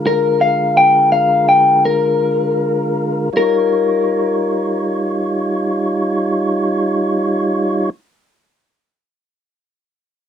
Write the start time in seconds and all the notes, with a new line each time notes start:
Already playing: D3 G#3 F4 A#4
0.07 A#4
0.41 F5
0.77 G5
1.12 F5
1.49 G5
1.85 A#4
3.33 G3 D#4 F4 C#5
3.37 A#4